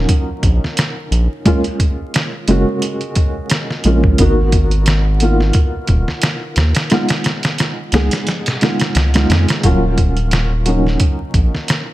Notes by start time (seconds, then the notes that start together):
Already playing: F#3 A#3 C#4 D#4 F4
0.09 kick, closed hi-hat
0.43 A#1, kick, closed hi-hat
0.64 snare
0.77 snare, closed hi-hat
1.11 A#1, closed hi-hat
1.45 G#3 A#3 C#4 F4, kick, closed hi-hat
1.64 closed hi-hat
1.80 kick, closed hi-hat
2.14 snare, closed hi-hat
2.48 F#1 G#3 A#3 C#4 F#4, closed hi-hat
2.82 closed hi-hat
3.01 closed hi-hat
3.15 kick, closed hi-hat
3.50 snare, closed hi-hat
3.70 snare
3.84 A#1 G#3 A#3 C#4 F4, closed hi-hat
4.04 kick
4.18 G#1 A#3 B3 D#4 F#4, kick, closed hi-hat
4.52 kick, closed hi-hat
4.71 closed hi-hat
4.86 snare, closed hi-hat
5.20 A#3 B3 D#4 F4, closed hi-hat
5.40 snare
5.53 kick, closed hi-hat
5.87 D#1, kick, closed hi-hat
6.08 snare
6.22 snare, closed hi-hat
6.56 D#2, snare, closed hi-hat
6.75 snare, closed hi-hat
6.90 G#3 B3 D#4 F4, snare, closed hi-hat
7.09 snare, closed hi-hat
7.24 snare, closed hi-hat
7.43 snare, closed hi-hat
7.58 snare, closed hi-hat
7.92 C#2 G#3 B3 D#4 G#4, snare, closed hi-hat
8.11 snare, closed hi-hat
8.27 snare, closed hi-hat
8.46 snare, closed hi-hat
8.61 G#3 B3 D#4 F4, snare, closed hi-hat
8.80 snare, closed hi-hat
8.95 C#2, snare, closed hi-hat
9.14 G#3 B3 D#4 F4, snare, closed hi-hat
9.30 F2, snare, closed hi-hat
9.49 snare, closed hi-hat
9.63 D#1 F#3 A#3 C#4 F4, kick, closed hi-hat
9.98 kick, closed hi-hat
10.17 closed hi-hat
10.31 snare, closed hi-hat
10.66 F#3 A#3 C#4 D#4, closed hi-hat
10.86 snare
11.00 kick, closed hi-hat
11.34 A#1, kick, closed hi-hat
11.55 snare
11.68 snare, closed hi-hat